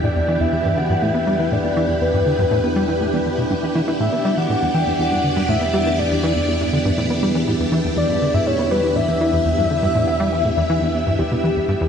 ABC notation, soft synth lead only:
X:1
M:4/4
L:1/16
Q:1/4=121
K:Em
V:1 name="Soft synth lead"
d3 e3 f2 e4 d4 | B8 z8 | e3 f3 g2 f4 e4 | d8 z8 |
d3 e ^c2 B2 e8- | e8- e2 G6 |]